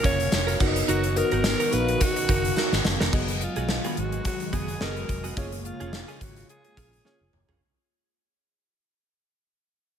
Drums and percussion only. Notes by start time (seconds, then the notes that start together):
0.04 kick, closed hi-hat
0.20 closed hi-hat
0.32 snare, tambourine
0.48 closed hi-hat, tambourine
0.60 kick, tambourine, crash
0.76 closed hi-hat
0.88 closed hi-hat, tambourine
1.04 closed hi-hat
1.16 closed hi-hat, tambourine
1.32 closed hi-hat
1.44 snare, tambourine
1.60 closed hi-hat
1.72 closed hi-hat, tambourine
1.88 closed hi-hat
2.01 kick, closed hi-hat, tambourine
2.16 closed hi-hat, tambourine
2.29 kick, closed hi-hat
2.45 closed hi-hat
2.56 snare, tambourine
2.73 snare, tambourine
2.84 snare, tambourine
3.00 snare
3.13 kick, crash
3.28 closed hi-hat
3.41 closed hi-hat
3.56 closed hi-hat
3.69 snare
3.84 closed hi-hat
3.97 closed hi-hat
4.12 closed hi-hat
4.25 kick, closed hi-hat
4.40 closed hi-hat
4.53 kick, closed hi-hat
4.68 closed hi-hat
4.81 snare
4.96 closed hi-hat
5.09 kick, closed hi-hat
5.24 closed hi-hat
5.37 kick, closed hi-hat
5.52 closed hi-hat
5.65 closed hi-hat
5.80 closed hi-hat
5.93 snare
6.08 closed hi-hat
6.21 kick, closed hi-hat
6.36 closed hi-hat
6.49 closed hi-hat
6.64 closed hi-hat
6.77 kick, closed hi-hat
6.93 closed hi-hat
7.05 snare
7.33 mid tom
7.49 floor tom